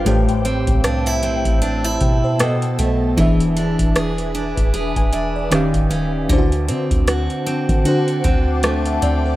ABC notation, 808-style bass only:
X:1
M:4/4
L:1/16
Q:"Swing 16ths" 1/4=77
K:Am
V:1 name="808-style bass" clef=bass
A,,,3 C,,3 B,,, A,,,3 B,,2 z2 B,,,2 | E,,,3 E,,,4 E,,,2 E,,,3 ^D,,, D,,,3 | D,,2 D, D,,2 z2 D,3 D,,4 D,,2 |]